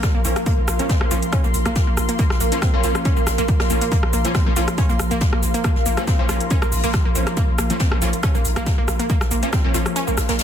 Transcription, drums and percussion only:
0.03 kick, cross-stick, snare, closed hi-hat, shaker
0.25 closed hi-hat, open hi-hat, shaker
0.36 cross-stick, closed hi-hat, shaker
0.46 kick, closed hi-hat, shaker
0.68 cross-stick, closed hi-hat, open hi-hat, shaker
0.79 closed hi-hat, shaker
0.89 kick, snare, closed hi-hat, shaker
1.01 cross-stick
1.10 closed hi-hat, open hi-hat, shaker
1.22 closed hi-hat, shaker
1.32 kick, cross-stick, closed hi-hat, shaker
1.44 closed hi-hat, shaker
1.54 closed hi-hat, open hi-hat, shaker
1.66 cross-stick, closed hi-hat, shaker
1.76 kick, snare, closed hi-hat, shaker
1.97 cross-stick, closed hi-hat, open hi-hat, shaker
2.09 closed hi-hat, shaker
2.19 kick, closed hi-hat, shaker
2.30 cross-stick, snare
2.40 closed hi-hat, open hi-hat, shaker
2.52 closed hi-hat, shaker
2.62 kick, cross-stick, snare, closed hi-hat, shaker
2.83 closed hi-hat, open hi-hat, shaker
2.95 cross-stick, open hi-hat, shaker
3.05 kick, closed hi-hat, shaker
3.17 shaker
3.27 cross-stick, snare, closed hi-hat, open hi-hat, shaker
3.38 closed hi-hat, shaker
3.48 kick, closed hi-hat, shaker
3.60 cross-stick, snare, closed hi-hat
3.70 open hi-hat, shaker
3.81 closed hi-hat, shaker
3.92 kick, closed hi-hat, shaker
4.03 cross-stick
4.13 closed hi-hat, open hi-hat, shaker
4.25 closed hi-hat, shaker
4.35 kick, cross-stick, snare, closed hi-hat, shaker
4.56 closed hi-hat, open hi-hat, shaker
4.68 cross-stick, closed hi-hat, shaker
4.78 kick, closed hi-hat, shaker
4.89 closed hi-hat, shaker
4.99 cross-stick, closed hi-hat, open hi-hat, shaker
5.11 closed hi-hat, shaker
5.20 kick, snare, closed hi-hat, shaker
5.33 cross-stick
5.43 closed hi-hat, open hi-hat, shaker
5.54 closed hi-hat, shaker
5.64 kick, cross-stick, closed hi-hat, shaker
5.76 snare
5.86 closed hi-hat, open hi-hat, shaker
5.97 cross-stick, closed hi-hat, shaker
6.07 kick, snare, closed hi-hat, shaker
6.29 cross-stick, closed hi-hat, open hi-hat, shaker
6.40 closed hi-hat, shaker
6.50 kick, closed hi-hat, shaker
6.62 cross-stick, shaker
6.72 open hi-hat, shaker
6.84 closed hi-hat, shaker
6.94 kick, cross-stick, snare, closed hi-hat, shaker
7.15 closed hi-hat, open hi-hat, shaker
7.27 cross-stick, closed hi-hat, shaker
7.36 kick, closed hi-hat, shaker
7.58 cross-stick, closed hi-hat, open hi-hat, shaker
7.70 closed hi-hat, shaker
7.79 kick, snare, closed hi-hat, shaker
7.92 cross-stick
8.02 closed hi-hat, open hi-hat, shaker
8.13 closed hi-hat, shaker
8.23 kick, cross-stick, closed hi-hat, shaker
8.35 closed hi-hat, shaker
8.45 closed hi-hat, open hi-hat, shaker
8.56 cross-stick, closed hi-hat, shaker
8.66 kick, snare, closed hi-hat, shaker
8.88 cross-stick, closed hi-hat, open hi-hat, shaker
8.99 closed hi-hat, shaker
9.10 kick, closed hi-hat, shaker
9.21 cross-stick, snare, shaker
9.31 closed hi-hat, open hi-hat, shaker
9.43 closed hi-hat, shaker
9.53 kick, cross-stick, snare, closed hi-hat, shaker
9.74 closed hi-hat, open hi-hat, shaker
9.86 cross-stick, open hi-hat, shaker
9.96 closed hi-hat, shaker
10.07 shaker
10.17 cross-stick, snare, closed hi-hat, open hi-hat, shaker
10.29 snare, closed hi-hat, shaker
10.39 snare, closed hi-hat, shaker

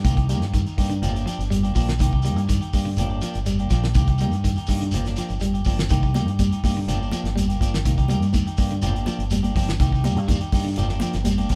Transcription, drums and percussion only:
0.05 kick, closed hi-hat, shekere
0.17 kick, closed hi-hat, shekere
0.29 closed hi-hat, shekere
0.41 snare, closed hi-hat, shekere
0.54 kick, closed hi-hat, shekere
0.67 closed hi-hat, shekere
0.78 kick, open hi-hat, shekere
0.91 closed hi-hat, shekere
1.03 closed hi-hat, shekere
1.16 closed hi-hat, shekere
1.27 closed hi-hat, shekere
1.40 closed hi-hat, shekere
1.51 closed hi-hat, shekere
1.63 closed hi-hat, shekere
1.75 kick, open hi-hat, shekere
1.87 snare, closed hi-hat, shekere
1.99 kick, closed hi-hat, shekere
2.11 kick, shekere
2.22 closed hi-hat, shekere
2.36 closed hi-hat, shekere
2.49 kick, closed hi-hat, shekere
2.61 closed hi-hat, shekere
2.73 kick, open hi-hat, shekere
2.85 shekere
2.97 closed hi-hat, shekere
3.10 shekere
3.21 closed hi-hat, shekere
3.34 closed hi-hat, shekere
3.46 closed hi-hat, shekere
3.58 closed hi-hat, shekere
3.70 kick, snare, closed hi-hat, shekere
3.84 snare, closed hi-hat, shekere
3.94 kick, closed hi-hat, shekere
4.07 kick, closed hi-hat, shekere
4.18 closed hi-hat, shekere
4.31 closed hi-hat, shekere
4.44 kick, closed hi-hat, shekere
4.55 closed hi-hat, shekere
4.67 kick, open hi-hat, shekere
4.81 closed hi-hat, shekere
4.91 closed hi-hat, shekere
5.04 snare, closed hi-hat, shekere
5.16 closed hi-hat, shekere
5.28 closed hi-hat, shekere
5.40 closed hi-hat, shekere
5.54 closed hi-hat, shekere
5.65 kick, open hi-hat, shekere
5.79 snare, shekere
5.89 kick, closed hi-hat, high conga, shekere
6.03 kick, shekere
6.14 snare, closed hi-hat, high conga, shekere
6.28 closed hi-hat, shekere
6.39 kick, closed hi-hat, high conga, shekere
6.52 closed hi-hat, high conga, shekere
6.64 kick, open hi-hat, high conga, shekere
6.77 shekere
6.88 closed hi-hat, high conga, shekere
7.03 shekere
7.12 closed hi-hat, high conga, shekere
7.25 snare, closed hi-hat, shekere
7.35 closed hi-hat, high conga, shekere
7.50 closed hi-hat, shekere
7.61 kick, closed hi-hat, shekere
7.74 snare, closed hi-hat, shekere
7.85 kick, closed hi-hat, high conga, shekere
7.98 kick, closed hi-hat, shekere
8.08 closed hi-hat, high conga, shekere
8.22 closed hi-hat, shekere
8.33 kick, closed hi-hat, high conga, shekere
8.46 closed hi-hat, high conga, shekere
8.57 kick, open hi-hat, shekere
8.71 closed hi-hat, shekere
8.82 closed hi-hat, high conga, shekere
8.95 closed hi-hat, shekere
9.06 closed hi-hat, high conga, shekere
9.20 closed hi-hat, shekere
9.30 closed hi-hat, high conga, shekere
9.43 closed hi-hat, high conga, shekere
9.56 kick, open hi-hat, shekere
9.69 snare, closed hi-hat, shekere
9.79 kick, closed hi-hat, high conga, shekere
9.92 kick, shekere
10.04 closed hi-hat, high conga, shekere
10.17 closed hi-hat, shekere
10.28 kick, closed hi-hat, high conga, shekere
10.41 closed hi-hat, high conga, shekere
10.52 kick, open hi-hat, shekere
10.68 shekere
10.76 closed hi-hat, high conga, shekere
10.89 snare, shekere
11.00 closed hi-hat, high conga, shekere
11.13 snare, closed hi-hat, shekere
11.24 closed hi-hat, high conga, shekere
11.38 closed hi-hat, high conga, shekere
11.49 kick, closed hi-hat, shekere

